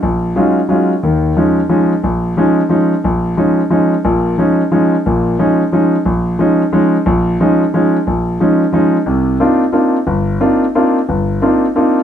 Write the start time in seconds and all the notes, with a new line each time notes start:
0.03 A#1
0.36 F#3 G#3 C#4 D#4 F4
0.69 F#3 G#3 C#4 D#4 F4
1.03 D#2 D#3
1.37 F3 G#3 C#4 D#4
1.69 F3 G#3 C#4 D#4
2.04 A#1
2.37 F3 G#3 C#4 D#4
2.69 F3 G#3 C#4 D#4
3.04 A#1
3.37 F3 G#3 C#4 D#4
3.70 F3 G#3 C#4 D#4
4.04 A#1 A#2
4.38 F3 G#3 C#4 D#4
4.71 F3 G#3 C#4 D#4
5.06 A#1 A#2
5.39 F3 G#3 C#4 D#4
5.72 F3 G#3 C#4 D#4
6.05 A#1
6.39 F3 G#3 C#4 D#4
6.73 F3 G#3 C#4 D#4
7.06 A#1
7.40 F3 G#3 C#4 D#4
7.74 F3 G#3 C#4 D#4
8.07 A#1
8.40 F3 G#3 C#4 D#4
8.72 F3 G#3 C#4 D#4
9.06 C2 C3
9.40 A#3 C4 D4 D#4 F4
9.72 A#3 C4 D4 D#4 F4
10.07 G1
10.41 A#3 C4 D4 D#4 F4
10.75 A#3 C4 D4 D#4 F4
11.09 G1
11.41 A#3 C4 D4 D#4 F4
11.76 A#3 C4 D4 D#4 F4